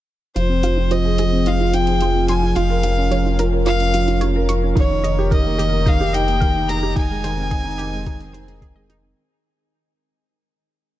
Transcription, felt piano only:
0.36 0.49 F3 medium
0.49 0.63 C4 medium
0.63 0.77 F3 medium
0.77 0.90 F4 medium
0.91 1.04 F3 medium
1.05 1.18 G#4 medium
1.19 1.32 F3 medium
1.33 1.46 C4 medium
1.47 1.60 F3 medium
1.60 1.73 F4 medium
1.74 1.87 F3 medium
1.88 2.01 G#4 medium
2.02 2.15 F3 medium
2.15 2.28 C4 medium
2.29 2.42 F3 medium
2.42 2.56 F4 medium
2.56 2.69 F3 medium
2.70 2.83 A#4 medium
2.84 2.97 F3 medium
2.98 3.11 C#4 medium
3.11 3.24 F3 medium
3.26 3.39 F4 medium
3.40 3.52 F3 medium
3.53 3.66 A#4 medium
3.67 3.80 F3 medium
3.80 3.93 C#4 medium
3.94 4.07 F3 medium
4.08 4.21 F4 medium
4.22 4.35 F3 medium
4.36 4.49 A#4 loud
4.50 4.62 F3 medium
4.63 4.76 C#4 medium
4.77 4.90 D#3 loud
4.91 5.04 D#4 medium
5.04 5.17 D#3 medium
5.19 5.31 G4 medium
5.32 5.45 D#3 medium
5.46 5.59 A#3 medium
5.59 5.72 D#3 medium
5.73 5.86 D#4 medium
5.87 6.00 D#3 medium
6.01 6.14 G4 loud
6.14 6.27 D#3 medium
6.28 6.41 A#3 medium
6.42 6.55 D#3 loud
6.56 6.69 D#4 medium
6.70 6.83 D#3 medium
6.83 6.96 G4 loud
6.97 7.10 D#3 medium
7.10 7.24 G#3 medium
7.24 7.37 D#3 loud
7.38 7.51 C4 medium
7.51 7.65 D#3 medium
7.65 7.78 D#4 loud
7.79 7.92 D#3 medium
7.93 8.06 G#3 medium
8.07 8.20 D#3 loud
8.21 8.34 C4 medium
8.34 8.48 D#3 medium
8.48 8.61 D#4 loud
8.62 8.75 D#3 medium
8.76 8.89 G#3 medium
8.89 9.02 D#3 medium
9.03 9.16 C4 medium

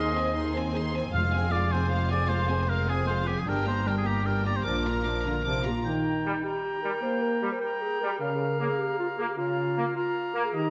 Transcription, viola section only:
0.00 0.17 D#4 soft
0.16 0.36 C4 soft
0.36 0.54 D#4 soft
0.55 0.75 C4 soft
0.75 0.95 D#4 soft
0.94 1.14 C4 soft
1.14 1.32 G#3 soft
1.33 1.53 C4 soft
1.53 1.72 G#3 soft
1.73 1.92 C4 soft
1.91 2.09 G#3 soft
2.11 2.30 C4 soft
2.30 2.50 G#3 soft
2.49 2.69 C4 soft
2.68 2.87 G#3 soft
2.88 3.08 C4 soft
3.08 3.28 G#3 soft
3.28 3.47 C4 soft
3.48 3.66 G3 soft
3.67 3.87 A#3 soft
3.87 4.07 G3 soft
4.06 4.26 A#3 soft
4.26 4.44 G3 soft
4.46 4.66 A#3 soft
4.66 4.85 F3 soft
4.86 5.06 A#3 soft
5.07 5.26 F3 soft
5.26 5.45 A#3 soft
5.46 5.64 F3 soft
5.66 5.85 A#3 soft

